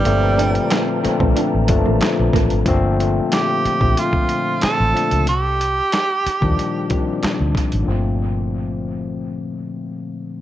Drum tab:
HH |x-xxx-x-x-x-x-xx|x-x-x-x-x-x-x-xx|x-x-x-x-x-x-x-xx|----------------|
CP |----x-------x---|----x-------x---|----x-------x---|----------------|
SD |----o-------o---|----o-------o---|----o-------o---|----------------|
BD |-------o--o---o-|o------o-o------|-------o--o---o-|----------------|